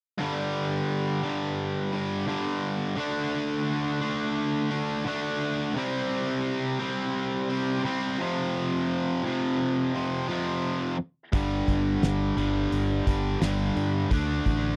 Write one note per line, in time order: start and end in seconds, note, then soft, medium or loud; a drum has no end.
0.18 1.21 G2 medium
0.18 1.22 D3 medium
0.18 1.21 G3 medium
1.23 2.26 G2 medium
1.23 2.26 D3 medium
1.23 2.25 G3 medium
1.92 2.25 G2 medium
1.92 2.26 D3 medium
1.92 2.25 G3 medium
2.27 2.95 G2 medium
2.27 2.95 D3 medium
2.27 2.97 G3 medium
2.96 3.99 D3 medium
2.96 4.00 A3 medium
2.96 4.00 D4 medium
4.01 5.04 D3 medium
4.01 5.05 A3 medium
4.01 5.04 D4 medium
4.71 5.05 D3 medium
4.71 5.04 A3 medium
4.71 5.04 D4 medium
5.05 5.73 D3 medium
5.05 5.74 A3 medium
5.05 5.75 D4 medium
5.75 6.78 C3 medium
5.75 6.79 G3 medium
5.75 6.79 C4 loud
6.79 7.82 C3 medium
6.79 7.83 G3 medium
6.79 7.82 C4 medium
7.49 7.83 C3 medium
7.49 7.83 G3 medium
7.49 7.83 C4 medium
7.83 8.17 C3 medium
7.83 8.18 G3 medium
7.83 8.19 C4 medium
8.18 9.21 F2 medium
8.18 9.22 C3 medium
8.18 9.23 F3 medium
9.23 10.26 F2 medium
9.23 10.27 C3 medium
9.23 10.27 F3 medium
9.94 10.26 F2 medium
9.94 10.27 C3 medium
9.94 10.27 F3 medium
10.28 10.98 F2 medium
10.28 10.97 C3 medium
10.28 10.96 F3 medium
11.32 11.61 G1 medium
11.32 12.35 G2 medium
11.32 12.36 D3 medium
11.32 12.36 G3 medium
11.32 kick loud
11.32 open hi-hat medium
11.68 11.96 G1 medium
11.68 kick medium
11.68 open hi-hat soft
12.02 12.31 G1 medium
12.02 snare loud
12.02 open hi-hat medium
12.37 12.65 G1 medium
12.37 13.39 G2 medium
12.37 13.40 D3 medium
12.37 13.39 G3 medium
12.37 open hi-hat soft
12.72 13.00 G1 medium
12.72 open hi-hat medium
13.07 13.35 G1 medium
13.07 13.41 G2 medium
13.07 13.40 D3 medium
13.07 13.40 G3 medium
13.07 kick medium
13.07 open hi-hat medium
13.40 13.70 G1 medium
13.40 14.08 G2 medium
13.40 14.09 D3 medium
13.40 14.10 G3 medium
13.40 snare loud
13.40 open hi-hat medium
13.76 14.05 G2 medium
13.76 open hi-hat soft
14.10 14.39 D2 medium
14.10 14.76 D3 medium
14.10 14.76 A3 medium
14.10 14.76 D4 medium
14.10 kick loud
14.10 open hi-hat medium
14.46 14.74 A1 medium
14.46 kick medium
14.46 open hi-hat soft